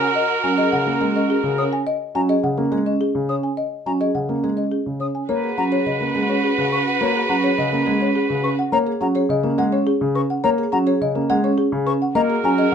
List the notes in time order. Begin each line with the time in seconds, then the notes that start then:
Already playing: F#4 A#4
0.02 G#5
0.15 D#5
0.44 F#3 C#4 G#5
0.58 G#4 D#5
0.72 C#3 F#5
0.87 A#3 C#4
1.01 G#3 G#4
1.15 C#4 D#5
1.30 G#4
1.43 C#3
1.58 C#4 C#5 D#6
1.73 G#5
1.87 D#5
2.15 F#3 C#4 G#5 A#5
2.29 G#4 D#5
2.43 C#3 F#5
2.58 A#3 C#4
2.72 G#3 G#4
2.86 C#4 D#5
3.01 G#4
3.15 C#3
3.29 C#4 C#5 D#6
3.43 G#5
3.57 D#5
3.86 F#3 C#4 G#5 A#5
4.01 G#4 D#5
4.15 C#3 F#5
4.29 A#3 C#4
4.44 G#3 G#4
4.57 C#4 D#5
4.72 G#4
4.86 C#3
5.00 C#4 C#5 D#6
5.15 G#5
5.29 A#3 F#4 B4 C#5
5.44 G#4
5.58 F#3 C#4 F#5 A#5
5.72 G#4 C#5
5.86 C#3 D#5
6.00 A#3 C#4
6.15 G#3 G#4
6.29 C#4 C#5
6.44 G#4
6.58 C#3
6.72 C#4 B4 C#6
6.87 F#5
7.01 A#3 C#5
7.15 G#4
7.29 F#3 C#4 F#5 A#5
7.43 G#4 C#5
7.58 C#3 D#5
7.72 A#3 C#4
7.86 G#3 G#4
8.01 C#4 C#5
8.16 G#4
8.30 C#3
8.43 C#4 B4 C#6
8.59 F#5
8.72 A#3 C#5 A#5
8.87 G#4
9.01 F#3 C#4 F#5 A#5
9.15 G#4 C#5
9.29 C#3 D#5
9.43 A#3 C#4
9.58 G#3 G#4 F#5
9.72 C#4 C#5
9.87 G#4
10.01 C#3
10.15 C#4 B4 C#6
10.30 F#5
10.44 A#3 C#5 A#5
10.58 G#4
10.72 F#3 C#4 F#5 A#5
10.87 G#4 C#5
11.01 C#3 D#5
11.15 A#3 C#4
11.29 G#3 G#4 F#5
11.44 C#4 C#5
11.58 G#4
11.72 C#3
11.86 C#4 B4 C#6
12.02 F#5
12.14 A#3 F#4 A#4 D#5 A#5
12.30 G#4
12.44 F#3 C#4 G#5 A#5
12.58 G#4 D#5